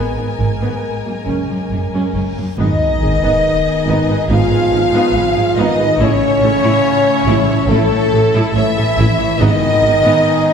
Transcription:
Already playing: french horn section G#3 A#4, viola section B3, violin section A#4 G#5, reverse cymbal
0.18 cello section G#2, viola section B3
0.39 double bass section G#1, cello section G#2, viola section A#3
0.61 cello section G#2, viola section B3
1.05 cello section F#2, viola section A#3
1.25 double bass section F#1, cello section F#2, viola section C#4
1.49 cello section F#2, viola section C#4
1.70 double bass section F#1, cello section F#2, viola section A#3
1.93 cello section F#2, viola section C#4
2.15 double bass section F#1, cello section F#2, viola section C#4
2.36 cello section F#2, viola section A#3
2.56 tuba G#1, double bass section G#1, cello section G#2, trombone section D#3, string section B3 D#4 G#4 G#5, viola section B3 D#4, french horn section D#4, flute section D#5, violin section D#5, sub drop
3.00 double bass section G#1, tuba G#1, cello section G#2, viola section D#4 G#4
3.22 cello section G#2, viola section B3 D#4
3.86 tuba G#1, double bass section G#1, cello section G#2, viola section B3 D#4
4.09 cello section G#2, viola section G#4 B4
4.28 double bass section G#1, tuba G#1, cello section G#2, trombone section F3, viola section B3 D#4, french horn section F4, violin section F5, flute section F5
4.50 cello section G#2, viola section G#4 B4
4.71 double bass section G#1, tuba G#1, cello section G#2, viola section D#4 G#4
4.92 cello section G#2, viola section B3 D#4
5.13 double bass section G#1, tuba G#1, cello section G#2, viola section G#4 B4
5.35 cello section G#2, viola section D#4 G#4
5.54 double bass section G#1, tuba G#1, cello section G#2, trombone section D#3, viola section B3 D#4, flute section D#5, violin section D#5
5.59 french horn section D#4
5.78 cello section G#2, viola section G#4 B4
5.97 double bass section A1, tuba A1, cello section A2, trombone section C#3, string section A3 E4 A4 E5, french horn section C#4, viola section E4, violin section C#5, flute section C#5
6.40 double bass section A1, tuba A1, cello section A2, viola section A4
6.63 cello section A2, viola section E4
7.25 double bass section A1, tuba A1, cello section A2, viola section E4
7.49 cello section A2, viola section C#5
7.67 double bass section A1, tuba A1, trombone section A2, cello section A2, french horn section A3, viola section E4, violin section A4, flute section A4
7.91 cello section A2, viola section C#5
8.09 double bass section A1, tuba A1, viola section A4
8.14 cello section A2
8.34 cello section A2, viola section E4
8.53 double bass section A1, tuba A1, cello section A2, trombone section E3, french horn section E4, viola section C#5, violin section E5, flute section E5
8.77 cello section A2, viola section A4
8.97 double bass section A1, tuba A1, cello section A2, viola section E4
9.18 cello section A2, viola section C#5
9.38 tuba G#1, double bass section G#1, timpani G#2, cello section G#2, trombone section D#3, string section B3 D#4 G#4 G#5, viola section B3 D#4, french horn section D#4, violin section D#5, flute section D#5
9.81 tuba G#1, double bass section G#1, cello section G#2, viola section D#4 G#4
10.04 cello section G#2, viola section B3 D#4

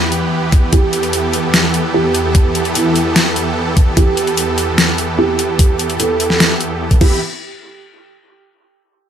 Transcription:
Already playing: supersaw synth E2 E3 B3 G4 B4, felt piano E4
0.12 closed hi-hat
0.52 kick, closed hi-hat
0.73 felt piano G4, supersaw synth A4, kick, closed hi-hat
0.93 closed hi-hat
1.03 closed hi-hat
1.13 closed hi-hat
1.33 closed hi-hat
1.54 snare, closed hi-hat
1.74 closed hi-hat
1.94 felt piano G4
2.15 closed hi-hat
2.35 kick, closed hi-hat
2.55 closed hi-hat
2.65 closed hi-hat
2.75 felt piano E4, closed hi-hat
2.96 closed hi-hat
3.16 snare, closed hi-hat
3.36 closed hi-hat
3.77 kick, closed hi-hat
3.97 felt piano G4, kick, closed hi-hat
4.17 closed hi-hat
4.27 closed hi-hat
4.37 closed hi-hat
4.58 closed hi-hat
4.78 snare, closed hi-hat
4.98 closed hi-hat
5.19 felt piano G4
5.39 closed hi-hat
5.59 kick, closed hi-hat
5.79 closed hi-hat
5.90 closed hi-hat
6.00 felt piano A4, closed hi-hat
6.20 closed hi-hat
6.30 snare
6.40 snare, closed hi-hat
6.61 closed hi-hat
6.91 kick, closed hi-hat
7.01 supersaw synth E3 B3 G4 E5 B5, felt piano G4, kick, crash

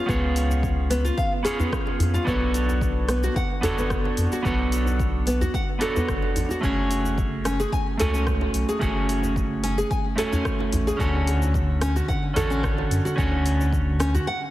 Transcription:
0.06 sub bass C#2, clean electric guitar B3 C#4 F4 G#4 C#5, nylon-string guitar B3, kick, shaker
0.36 open hi-hat, shaker
0.50 djembe tone, shaker
0.63 kick, shaker
0.90 nylon-string guitar B3, open hi-hat, djembe slap, shaker
1.05 nylon-string guitar F4, shaker
1.17 nylon-string guitar F5, kick, shaker
1.43 clean electric guitar B3 C#4 F4 G#4 C#5, nylon-string guitar G#4, open hi-hat, djembe slap, shaker
1.59 nylon-string guitar B3, djembe bass, shaker
1.72 kick, cross-stick, shaker
1.87 djembe slap
1.99 sub bass F2, open hi-hat, djembe bass, shaker
2.14 nylon-string guitar F4, djembe slap, djembe tone, shaker
2.25 sub bass B1, clean electric guitar B3 D4 F#4 A4 C#5, nylon-string guitar B3, kick, shaker
2.41 djembe tone
2.54 open hi-hat, djembe slap, shaker
2.69 djembe tone, shaker
2.81 kick, shaker
3.08 nylon-string guitar B3, cross-stick, open hi-hat, djembe slap, shaker
3.23 nylon-string guitar F#4, shaker
3.34 nylon-string guitar F#5, kick, djembe tone, shaker
3.61 sub bass F#1, clean electric guitar B3 D4 F#4 A4 C#5, nylon-string guitar A4, open hi-hat, djembe bass, shaker
3.77 nylon-string guitar B3, djembe tone, shaker
3.90 kick, cross-stick, shaker
4.05 djembe slap
4.17 sub bass F2, open hi-hat, shaker
4.32 nylon-string guitar F#4, djembe slap, shaker
4.43 sub bass B1, clean electric guitar B3 D4 F#4 A4 C#5, nylon-string guitar B3, kick, shaker
4.58 djembe tone
4.72 open hi-hat, shaker
4.86 djembe tone, shaker
5.00 kick, shaker
5.26 nylon-string guitar B3, open hi-hat, djembe slap, shaker
5.41 nylon-string guitar F#4, djembe bass, shaker
5.54 nylon-string guitar F#5, kick, shaker
5.79 clean electric guitar B3 D4 F#4 A4 C#5, nylon-string guitar A4, open hi-hat, djembe slap, shaker
5.96 nylon-string guitar B3, djembe bass, shaker
6.08 sub bass F#1, kick, cross-stick, shaker
6.22 djembe slap
6.36 sub bass A1, open hi-hat, djembe bass, shaker
6.49 nylon-string guitar F#4, djembe slap, djembe tone, shaker
6.61 sub bass F#1, clean electric guitar A3 C#4 F#4 G#4, nylon-string guitar C#4, kick, shaker
6.65 clean electric guitar C#5
6.77 djembe tone
6.90 open hi-hat, djembe slap, shaker
7.04 djembe tone, shaker
7.18 kick, shaker
7.44 nylon-string guitar C#4, cross-stick, open hi-hat, djembe slap, shaker
7.60 nylon-string guitar G#4, shaker
7.72 nylon-string guitar G#5, kick, djembe tone, shaker
7.97 sub bass C#2, clean electric guitar A3 C#4 F#4 G#5, nylon-string guitar A4, open hi-hat, djembe bass, shaker
8.02 clean electric guitar C#5
8.14 nylon-string guitar C#4, djembe tone, shaker
8.27 kick, cross-stick, shaker
8.41 djembe slap
8.54 sub bass B1, open hi-hat, shaker
8.69 nylon-string guitar G#4, djembe slap, shaker
8.79 sub bass F#1, clean electric guitar A3 C#4 F#4 G#4 C#5, nylon-string guitar C#4, kick, shaker
9.09 open hi-hat, shaker
9.23 djembe tone, shaker
9.36 kick, shaker
9.63 nylon-string guitar C#4, open hi-hat, djembe slap, shaker
9.78 nylon-string guitar G#4, shaker
9.91 nylon-string guitar G#5, kick, shaker
10.16 clean electric guitar A3 C#4 F#4 G#5, nylon-string guitar A4, open hi-hat, djembe slap, shaker
10.20 clean electric guitar C#5
10.32 nylon-string guitar C#4, djembe bass, shaker
10.45 kick, cross-stick, shaker
10.60 djembe slap
10.72 sub bass A1, open hi-hat, djembe bass, shaker
10.87 nylon-string guitar G#4, djembe slap, djembe tone, shaker
10.97 sub bass D2, clean electric guitar D3 C#4 F#4 A4, nylon-string guitar C#4, kick, shaker
11.01 clean electric guitar C#5
11.15 djembe tone
11.27 open hi-hat, djembe slap, shaker
11.42 djembe tone, shaker
11.54 kick, shaker
11.81 nylon-string guitar C#4, cross-stick, open hi-hat, djembe slap, shaker
11.96 nylon-string guitar F#4, shaker
12.08 nylon-string guitar F#5, kick, djembe tone, shaker
12.34 sub bass A1, clean electric guitar D3 C#4 F#4 A4 C#5, nylon-string guitar A4, open hi-hat, djembe bass, shaker
12.50 nylon-string guitar C#4, djembe tone, shaker
12.63 kick, cross-stick, shaker
12.78 djembe slap
12.91 sub bass F#2, open hi-hat, shaker
13.05 nylon-string guitar F#4, djembe slap, shaker
13.16 sub bass D2, clean electric guitar D3 C#4 F#4 A4 C#5, nylon-string guitar C#4, kick, shaker
13.32 djembe tone
13.45 open hi-hat, djembe slap, shaker
13.61 djembe tone, shaker
13.73 kick, shaker
14.00 nylon-string guitar C#4, cross-stick, open hi-hat, djembe slap, shaker
14.14 nylon-string guitar F#4, djembe bass, shaker
14.27 nylon-string guitar F#5

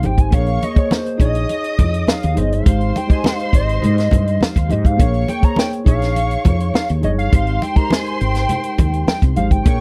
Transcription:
Already playing: tine electric piano G#3 D#4 G4 C5
0.02 fretless electric bass G#1, tine electric piano G#3 D#4 G4 C5, analog synth lead G5, closed hi-hat, high conga
0.18 analog synth lead G#5, kick, closed hi-hat
0.31 fretless electric bass A#1, tine electric piano A#3 G#4 A#4 C#5, string section C#5 C#6, analog synth lead F5, kick, closed hi-hat
0.46 closed hi-hat
0.62 analog synth lead D#5, closed hi-hat, muted conga
0.75 tine electric piano A#3 G#4 C5 D#5, analog synth lead C#5, kick, closed hi-hat
0.91 analog synth lead C5, snare, high conga
1.06 closed hi-hat
1.18 fretless electric bass A#1, tine electric piano D#4 G#4 C#5, string section D#5 D#6, analog synth lead D#5, kick, closed hi-hat
1.35 closed hi-hat
1.49 closed hi-hat, muted conga
1.64 closed hi-hat
1.79 fretless electric bass F2, kick, closed hi-hat, muted conga, low conga
1.94 closed hi-hat
2.07 analog synth lead F5, snare, high conga
2.23 fretless electric bass D#2, closed hi-hat
2.35 fretless electric bass G1, tine electric piano D#4 G#4 C5, analog synth lead D#5, closed hi-hat, high conga
2.52 analog synth lead F5, closed hi-hat
2.63 fretless electric bass G#1, tine electric piano G#3 D#4 G4 C5, string section C5 C6, kick, closed hi-hat
2.81 closed hi-hat
2.96 analog synth lead G5, closed hi-hat, muted conga
3.07 tine electric piano G#3 D#4 G4 D#5, kick, closed hi-hat
3.12 analog synth lead G#5
3.24 analog synth lead F5, snare, high conga
3.40 closed hi-hat
3.53 fretless electric bass G#1, analog synth lead D#5, kick, closed hi-hat
3.69 closed hi-hat
3.82 fretless electric bass G#2, closed hi-hat, low conga
3.98 snare, closed hi-hat
4.11 fretless electric bass G2, kick, closed hi-hat, muted conga, low conga
4.27 closed hi-hat
4.41 analog synth lead F5, muted fretless electric bass stroke, snare, high conga
4.56 fretless electric bass D#2, kick, closed hi-hat
4.68 tine electric piano G#3 D#4 G4 C5, analog synth lead D#5, closed hi-hat, high conga
4.72 fretless electric bass G#2
4.85 analog synth lead F5, kick, closed hi-hat
4.97 fretless electric bass A#1, tine electric piano A#3 G#4 A#4 C#5, string section C#5 C#6, kick, closed hi-hat
5.14 closed hi-hat
5.28 analog synth lead G5, closed hi-hat, muted conga
5.41 tine electric piano A#3 G#4 C5 C#5, analog synth lead A#5, kick, closed hi-hat
5.56 analog synth lead G5, snare, high conga
5.73 closed hi-hat
5.84 fretless electric bass A#1, tine electric piano D#4 G#4 C#5, string section C#5 C#6, analog synth lead F5, kick, closed hi-hat
6.02 snare, closed hi-hat
6.16 closed hi-hat, muted conga
6.31 closed hi-hat
6.45 fretless electric bass F2, kick, closed hi-hat, muted conga, low conga
6.60 closed hi-hat
6.74 analog synth lead F5, snare, high conga
6.89 fretless electric bass D#2, closed hi-hat
7.01 fretless electric bass G1, tine electric piano D#4 G#4 C#5, analog synth lead D#5, closed hi-hat, high conga
7.18 analog synth lead F5, closed hi-hat
7.31 fretless electric bass G#1, tine electric piano G#3 D#4 G4 C5, string section C5 C6, kick, closed hi-hat
7.47 closed hi-hat
7.62 analog synth lead G5, closed hi-hat, muted conga
7.75 tine electric piano G#3 D#4 G4 A#4, analog synth lead A#5, kick, closed hi-hat
7.90 analog synth lead G#5, snare, high conga
8.06 closed hi-hat
8.21 fretless electric bass G#1, analog synth lead G5, closed hi-hat
8.35 snare, closed hi-hat
8.49 closed hi-hat, muted conga, low conga
8.63 closed hi-hat
8.78 fretless electric bass D#2, kick, closed hi-hat, muted conga, low conga
8.93 closed hi-hat
9.08 analog synth lead G5, snare, high conga
9.22 fretless electric bass C2, kick, closed hi-hat
9.35 fretless electric bass G#1, tine electric piano G#3 D#4 G4 C5, analog synth lead F5, closed hi-hat, high conga
9.51 analog synth lead G5, kick, closed hi-hat
9.64 fretless electric bass A#1, tine electric piano A#3 G#4 A#4 C#5, string section C#5 C#6, kick, closed hi-hat

